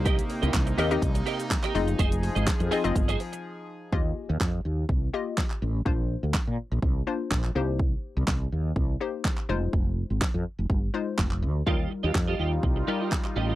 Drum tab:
HH |xxoxxxoxxxoxxxox|xxoxxxoxxxox----|----------------|----------------|
SH |xxxxxxxxxxxxxxxx|xxxxxxxxxxxx----|----------------|----------------|
CP |----x-------xx--|----x-----------|----x-------xx--|----x-------xx--|
SD |----o-------o---|----o-----------|----o-------o---|----o-------o---|
BD |o---o---o---o---|o---o---o-------|o---o---o---o---|o---o---o---o---|

HH |----------------|----------------|----------------|
SH |----------------|----------------|----------------|
CP |----x-------xx--|----x-------xx--|----x-------xx--|
SD |----o-------o---|----o-------o---|----o-------o---|
BD |o---o---o---o---|o---o---o---o---|o---o---o---o---|